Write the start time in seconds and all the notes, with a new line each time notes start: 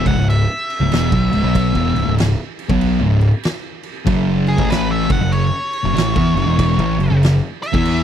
0.05 C#1 C#2 G#2 F#5, kick, crash
0.17 C#1 C#2 G#2
0.30 E5, crash
0.70 crash
0.80 C#1 C#2 G#2
0.91 E1 E2 B2, snare, crash
1.12 B1 B2 F#3, kick
1.31 C#1 C#2 G#2, crash
1.43 B1 B2 F#3 B3
1.55 kick, crash
1.73 E1 E2 B2, kick
1.95 C#1 C#2 G#2, crash
2.05 C#1 C#2 G#2
2.18 snare, crash
2.59 crash
2.69 B1 B2 F#3 B3, kick
2.81 crash
3.01 C#1 C#2 G#2
3.21 crash
3.43 snare, crash
3.83 crash
4.05 F#1 F#2 C#3 F#3, kick, crash
4.47 G#4, crash
4.57 A1 A2 E3 A3, kick
4.70 B4, snare, crash
4.91 E5
5.09 F#1 F#2 C#3 F#5, kick, crash
5.21 F#1 F#2 C#3
5.32 C#5, crash
5.73 crash
5.83 F#1 F#2 C#3
5.94 A1 A2 E3, crash
5.98 snare
6.16 E2 E3 B3, kick
6.35 F#1 F#2 C#3, crash
6.45 E1 E2 B2 E3
6.59 kick, crash
6.77 A1 A2 E3, kick
6.98 F#1 F#2 C#3, crash
7.10 F#1 F#2 C#3
7.23 snare, crash
7.63 E5, crash
7.73 E2 E3 B3 E4, kick
7.85 crash